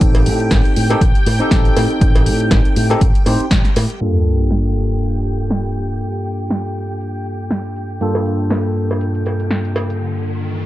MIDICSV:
0, 0, Header, 1, 8, 480
1, 0, Start_track
1, 0, Key_signature, -2, "minor"
1, 0, Tempo, 500000
1, 12, Time_signature, 4, 2, 24, 8
1, 10233, End_track
2, 0, Start_track
2, 0, Title_t, "String machine"
2, 0, Program_c, 0, 50
2, 0, Note_on_c, 0, 79, 84
2, 3840, Note_off_c, 0, 79, 0
2, 3852, Note_on_c, 0, 79, 80
2, 9612, Note_off_c, 0, 79, 0
2, 10233, End_track
3, 0, Start_track
3, 0, Title_t, "Tine electric piano"
3, 0, Program_c, 1, 4
3, 0, Note_on_c, 1, 60, 84
3, 0, Note_on_c, 1, 63, 77
3, 0, Note_on_c, 1, 67, 76
3, 0, Note_on_c, 1, 69, 91
3, 830, Note_off_c, 1, 60, 0
3, 833, Note_off_c, 1, 63, 0
3, 836, Note_off_c, 1, 67, 0
3, 839, Note_off_c, 1, 69, 0
3, 862, Note_on_c, 1, 60, 83
3, 866, Note_on_c, 1, 63, 78
3, 868, Note_on_c, 1, 67, 78
3, 873, Note_on_c, 1, 69, 94
3, 954, Note_off_c, 1, 60, 0
3, 957, Note_off_c, 1, 63, 0
3, 958, Note_off_c, 1, 67, 0
3, 960, Note_off_c, 1, 69, 0
3, 1339, Note_on_c, 1, 60, 84
3, 1346, Note_on_c, 1, 63, 80
3, 1352, Note_on_c, 1, 67, 79
3, 1358, Note_on_c, 1, 69, 91
3, 2750, Note_off_c, 1, 60, 0
3, 2754, Note_off_c, 1, 63, 0
3, 2757, Note_off_c, 1, 67, 0
3, 2760, Note_off_c, 1, 69, 0
3, 2783, Note_on_c, 1, 60, 82
3, 2784, Note_on_c, 1, 63, 79
3, 2789, Note_on_c, 1, 67, 79
3, 2791, Note_on_c, 1, 69, 93
3, 2875, Note_off_c, 1, 60, 0
3, 2875, Note_off_c, 1, 63, 0
3, 2878, Note_off_c, 1, 67, 0
3, 2879, Note_off_c, 1, 69, 0
3, 3132, Note_on_c, 1, 60, 79
3, 3135, Note_on_c, 1, 63, 67
3, 3138, Note_on_c, 1, 67, 68
3, 3141, Note_on_c, 1, 72, 79
3, 3303, Note_off_c, 1, 60, 0
3, 3305, Note_off_c, 1, 63, 0
3, 3306, Note_off_c, 1, 67, 0
3, 3307, Note_off_c, 1, 72, 0
3, 3844, Note_on_c, 1, 43, 67
3, 3848, Note_on_c, 1, 58, 60
3, 3852, Note_on_c, 1, 62, 60
3, 3858, Note_on_c, 1, 65, 57
3, 3862, Note_on_c, 1, 69, 70
3, 7663, Note_off_c, 1, 43, 0
3, 7665, Note_off_c, 1, 58, 0
3, 7667, Note_off_c, 1, 62, 0
3, 7670, Note_off_c, 1, 65, 0
3, 7672, Note_off_c, 1, 69, 0
3, 7685, Note_on_c, 1, 43, 67
3, 7689, Note_on_c, 1, 58, 64
3, 7694, Note_on_c, 1, 62, 60
3, 7699, Note_on_c, 1, 65, 62
3, 7704, Note_on_c, 1, 69, 76
3, 10233, Note_off_c, 1, 43, 0
3, 10233, Note_off_c, 1, 58, 0
3, 10233, Note_off_c, 1, 62, 0
3, 10233, Note_off_c, 1, 65, 0
3, 10233, Note_off_c, 1, 69, 0
3, 10233, End_track
4, 0, Start_track
4, 0, Title_t, "Fingered electric bass"
4, 0, Program_c, 2, 33
4, 12, Note_on_c, 2, 33, 96
4, 253, Note_on_c, 2, 45, 81
4, 268, Note_off_c, 2, 33, 0
4, 492, Note_on_c, 2, 33, 94
4, 506, Note_off_c, 2, 45, 0
4, 580, Note_off_c, 2, 33, 0
4, 737, Note_on_c, 2, 45, 94
4, 901, Note_off_c, 2, 45, 0
4, 972, Note_on_c, 2, 33, 93
4, 1060, Note_off_c, 2, 33, 0
4, 1214, Note_on_c, 2, 45, 95
4, 1343, Note_off_c, 2, 45, 0
4, 1453, Note_on_c, 2, 33, 81
4, 1619, Note_off_c, 2, 33, 0
4, 1696, Note_on_c, 2, 45, 83
4, 1782, Note_off_c, 2, 45, 0
4, 1932, Note_on_c, 2, 33, 100
4, 2176, Note_on_c, 2, 45, 77
4, 2190, Note_off_c, 2, 33, 0
4, 2411, Note_on_c, 2, 33, 98
4, 2426, Note_off_c, 2, 45, 0
4, 2500, Note_off_c, 2, 33, 0
4, 2655, Note_on_c, 2, 45, 97
4, 2821, Note_off_c, 2, 45, 0
4, 2891, Note_on_c, 2, 33, 96
4, 2979, Note_off_c, 2, 33, 0
4, 3134, Note_on_c, 2, 45, 87
4, 3221, Note_off_c, 2, 45, 0
4, 3372, Note_on_c, 2, 33, 91
4, 3460, Note_off_c, 2, 33, 0
4, 3612, Note_on_c, 2, 45, 79
4, 3700, Note_off_c, 2, 45, 0
4, 10233, End_track
5, 0, Start_track
5, 0, Title_t, "Riser"
5, 0, Program_c, 3, 103
5, 7691, Note_on_c, 3, 60, 70
5, 10233, Note_off_c, 3, 60, 0
5, 10233, End_track
6, 0, Start_track
6, 0, Title_t, "Sub drop"
6, 0, Program_c, 4, 103
6, 3851, Note_on_c, 4, 60, 62
6, 5772, Note_off_c, 4, 60, 0
6, 10233, End_track
7, 0, Start_track
7, 0, Title_t, "Muted fingered electric bass strokes"
7, 1349, Note_on_c, 9, 29, 42
7, 1445, Note_off_c, 9, 29, 0
7, 3267, Note_on_c, 9, 29, 43
7, 3363, Note_off_c, 9, 29, 0
7, 10233, End_track
8, 0, Start_track
8, 0, Title_t, "Drums"
8, 10, Note_on_c, 9, 42, 100
8, 11, Note_on_c, 9, 36, 108
8, 106, Note_off_c, 9, 42, 0
8, 107, Note_off_c, 9, 36, 0
8, 142, Note_on_c, 9, 56, 80
8, 144, Note_on_c, 9, 42, 39
8, 238, Note_off_c, 9, 56, 0
8, 240, Note_off_c, 9, 42, 0
8, 251, Note_on_c, 9, 46, 94
8, 347, Note_off_c, 9, 46, 0
8, 385, Note_on_c, 9, 42, 39
8, 481, Note_off_c, 9, 42, 0
8, 488, Note_on_c, 9, 38, 107
8, 491, Note_on_c, 9, 36, 98
8, 493, Note_on_c, 9, 42, 86
8, 494, Note_on_c, 9, 56, 60
8, 584, Note_off_c, 9, 38, 0
8, 587, Note_off_c, 9, 36, 0
8, 589, Note_off_c, 9, 42, 0
8, 590, Note_off_c, 9, 56, 0
8, 627, Note_on_c, 9, 42, 39
8, 723, Note_off_c, 9, 42, 0
8, 733, Note_on_c, 9, 46, 101
8, 829, Note_off_c, 9, 46, 0
8, 867, Note_on_c, 9, 42, 40
8, 869, Note_on_c, 9, 56, 90
8, 963, Note_off_c, 9, 42, 0
8, 965, Note_off_c, 9, 56, 0
8, 972, Note_on_c, 9, 36, 104
8, 974, Note_on_c, 9, 42, 96
8, 1068, Note_off_c, 9, 36, 0
8, 1070, Note_off_c, 9, 42, 0
8, 1107, Note_on_c, 9, 42, 39
8, 1203, Note_off_c, 9, 42, 0
8, 1213, Note_on_c, 9, 46, 91
8, 1223, Note_on_c, 9, 56, 57
8, 1309, Note_off_c, 9, 46, 0
8, 1319, Note_off_c, 9, 56, 0
8, 1347, Note_on_c, 9, 42, 41
8, 1443, Note_off_c, 9, 42, 0
8, 1450, Note_on_c, 9, 38, 108
8, 1452, Note_on_c, 9, 36, 98
8, 1455, Note_on_c, 9, 42, 93
8, 1546, Note_off_c, 9, 38, 0
8, 1548, Note_off_c, 9, 36, 0
8, 1551, Note_off_c, 9, 42, 0
8, 1587, Note_on_c, 9, 42, 37
8, 1683, Note_off_c, 9, 42, 0
8, 1695, Note_on_c, 9, 46, 97
8, 1696, Note_on_c, 9, 56, 84
8, 1791, Note_off_c, 9, 46, 0
8, 1792, Note_off_c, 9, 56, 0
8, 1829, Note_on_c, 9, 42, 38
8, 1925, Note_off_c, 9, 42, 0
8, 1932, Note_on_c, 9, 36, 117
8, 1934, Note_on_c, 9, 42, 99
8, 2028, Note_off_c, 9, 36, 0
8, 2030, Note_off_c, 9, 42, 0
8, 2068, Note_on_c, 9, 42, 40
8, 2069, Note_on_c, 9, 56, 80
8, 2164, Note_off_c, 9, 42, 0
8, 2165, Note_off_c, 9, 56, 0
8, 2172, Note_on_c, 9, 46, 97
8, 2268, Note_off_c, 9, 46, 0
8, 2306, Note_on_c, 9, 42, 41
8, 2402, Note_off_c, 9, 42, 0
8, 2409, Note_on_c, 9, 38, 117
8, 2411, Note_on_c, 9, 56, 63
8, 2412, Note_on_c, 9, 36, 99
8, 2413, Note_on_c, 9, 42, 97
8, 2505, Note_off_c, 9, 38, 0
8, 2507, Note_off_c, 9, 56, 0
8, 2508, Note_off_c, 9, 36, 0
8, 2509, Note_off_c, 9, 42, 0
8, 2547, Note_on_c, 9, 42, 41
8, 2643, Note_off_c, 9, 42, 0
8, 2653, Note_on_c, 9, 46, 102
8, 2749, Note_off_c, 9, 46, 0
8, 2786, Note_on_c, 9, 42, 43
8, 2795, Note_on_c, 9, 56, 77
8, 2882, Note_off_c, 9, 42, 0
8, 2891, Note_off_c, 9, 56, 0
8, 2892, Note_on_c, 9, 36, 108
8, 2892, Note_on_c, 9, 42, 94
8, 2988, Note_off_c, 9, 36, 0
8, 2988, Note_off_c, 9, 42, 0
8, 3026, Note_on_c, 9, 42, 41
8, 3122, Note_off_c, 9, 42, 0
8, 3130, Note_on_c, 9, 56, 57
8, 3133, Note_on_c, 9, 46, 93
8, 3226, Note_off_c, 9, 56, 0
8, 3229, Note_off_c, 9, 46, 0
8, 3267, Note_on_c, 9, 42, 42
8, 3363, Note_off_c, 9, 42, 0
8, 3368, Note_on_c, 9, 38, 118
8, 3371, Note_on_c, 9, 36, 93
8, 3373, Note_on_c, 9, 42, 94
8, 3464, Note_off_c, 9, 38, 0
8, 3467, Note_off_c, 9, 36, 0
8, 3469, Note_off_c, 9, 42, 0
8, 3500, Note_on_c, 9, 38, 35
8, 3505, Note_on_c, 9, 42, 38
8, 3596, Note_off_c, 9, 38, 0
8, 3601, Note_off_c, 9, 42, 0
8, 3611, Note_on_c, 9, 46, 100
8, 3616, Note_on_c, 9, 56, 98
8, 3707, Note_off_c, 9, 46, 0
8, 3712, Note_off_c, 9, 56, 0
8, 3745, Note_on_c, 9, 42, 38
8, 3841, Note_off_c, 9, 42, 0
8, 3850, Note_on_c, 9, 42, 81
8, 3946, Note_off_c, 9, 42, 0
8, 4090, Note_on_c, 9, 42, 59
8, 4186, Note_off_c, 9, 42, 0
8, 4222, Note_on_c, 9, 42, 35
8, 4318, Note_off_c, 9, 42, 0
8, 4325, Note_on_c, 9, 38, 104
8, 4330, Note_on_c, 9, 42, 82
8, 4421, Note_off_c, 9, 38, 0
8, 4426, Note_off_c, 9, 42, 0
8, 4463, Note_on_c, 9, 42, 35
8, 4559, Note_off_c, 9, 42, 0
8, 4703, Note_on_c, 9, 42, 36
8, 4799, Note_off_c, 9, 42, 0
8, 4810, Note_on_c, 9, 42, 84
8, 4906, Note_off_c, 9, 42, 0
8, 4943, Note_on_c, 9, 42, 35
8, 5039, Note_off_c, 9, 42, 0
8, 5051, Note_on_c, 9, 42, 60
8, 5147, Note_off_c, 9, 42, 0
8, 5184, Note_on_c, 9, 42, 37
8, 5280, Note_off_c, 9, 42, 0
8, 5285, Note_on_c, 9, 38, 109
8, 5290, Note_on_c, 9, 42, 81
8, 5381, Note_off_c, 9, 38, 0
8, 5386, Note_off_c, 9, 42, 0
8, 5424, Note_on_c, 9, 42, 35
8, 5520, Note_off_c, 9, 42, 0
8, 5529, Note_on_c, 9, 42, 59
8, 5625, Note_off_c, 9, 42, 0
8, 5662, Note_on_c, 9, 42, 34
8, 5758, Note_off_c, 9, 42, 0
8, 5770, Note_on_c, 9, 42, 85
8, 5866, Note_off_c, 9, 42, 0
8, 5903, Note_on_c, 9, 42, 36
8, 5999, Note_off_c, 9, 42, 0
8, 6008, Note_on_c, 9, 42, 57
8, 6104, Note_off_c, 9, 42, 0
8, 6142, Note_on_c, 9, 42, 35
8, 6238, Note_off_c, 9, 42, 0
8, 6245, Note_on_c, 9, 38, 110
8, 6250, Note_on_c, 9, 42, 80
8, 6341, Note_off_c, 9, 38, 0
8, 6346, Note_off_c, 9, 42, 0
8, 6384, Note_on_c, 9, 42, 35
8, 6480, Note_off_c, 9, 42, 0
8, 6625, Note_on_c, 9, 42, 34
8, 6721, Note_off_c, 9, 42, 0
8, 6730, Note_on_c, 9, 42, 81
8, 6826, Note_off_c, 9, 42, 0
8, 6863, Note_on_c, 9, 42, 35
8, 6959, Note_off_c, 9, 42, 0
8, 6971, Note_on_c, 9, 42, 55
8, 7067, Note_off_c, 9, 42, 0
8, 7103, Note_on_c, 9, 42, 38
8, 7199, Note_off_c, 9, 42, 0
8, 7206, Note_on_c, 9, 38, 105
8, 7210, Note_on_c, 9, 42, 81
8, 7302, Note_off_c, 9, 38, 0
8, 7306, Note_off_c, 9, 42, 0
8, 7344, Note_on_c, 9, 42, 33
8, 7440, Note_off_c, 9, 42, 0
8, 7451, Note_on_c, 9, 42, 61
8, 7547, Note_off_c, 9, 42, 0
8, 7584, Note_on_c, 9, 42, 34
8, 7680, Note_off_c, 9, 42, 0
8, 7689, Note_on_c, 9, 42, 80
8, 7785, Note_off_c, 9, 42, 0
8, 7823, Note_on_c, 9, 42, 34
8, 7824, Note_on_c, 9, 56, 87
8, 7919, Note_off_c, 9, 42, 0
8, 7920, Note_off_c, 9, 56, 0
8, 7930, Note_on_c, 9, 42, 58
8, 8026, Note_off_c, 9, 42, 0
8, 8062, Note_on_c, 9, 42, 34
8, 8158, Note_off_c, 9, 42, 0
8, 8164, Note_on_c, 9, 38, 105
8, 8169, Note_on_c, 9, 42, 76
8, 8176, Note_on_c, 9, 56, 59
8, 8260, Note_off_c, 9, 38, 0
8, 8265, Note_off_c, 9, 42, 0
8, 8272, Note_off_c, 9, 56, 0
8, 8302, Note_on_c, 9, 42, 35
8, 8398, Note_off_c, 9, 42, 0
8, 8543, Note_on_c, 9, 42, 35
8, 8553, Note_on_c, 9, 56, 79
8, 8639, Note_off_c, 9, 42, 0
8, 8649, Note_off_c, 9, 56, 0
8, 8650, Note_on_c, 9, 42, 83
8, 8746, Note_off_c, 9, 42, 0
8, 8784, Note_on_c, 9, 42, 35
8, 8880, Note_off_c, 9, 42, 0
8, 8890, Note_on_c, 9, 42, 57
8, 8896, Note_on_c, 9, 56, 60
8, 8986, Note_off_c, 9, 42, 0
8, 8992, Note_off_c, 9, 56, 0
8, 9022, Note_on_c, 9, 42, 36
8, 9118, Note_off_c, 9, 42, 0
8, 9126, Note_on_c, 9, 38, 105
8, 9130, Note_on_c, 9, 42, 80
8, 9222, Note_off_c, 9, 38, 0
8, 9226, Note_off_c, 9, 42, 0
8, 9263, Note_on_c, 9, 42, 33
8, 9359, Note_off_c, 9, 42, 0
8, 9368, Note_on_c, 9, 56, 94
8, 9370, Note_on_c, 9, 42, 55
8, 9464, Note_off_c, 9, 56, 0
8, 9466, Note_off_c, 9, 42, 0
8, 9505, Note_on_c, 9, 42, 32
8, 9601, Note_off_c, 9, 42, 0
8, 10233, End_track
0, 0, End_of_file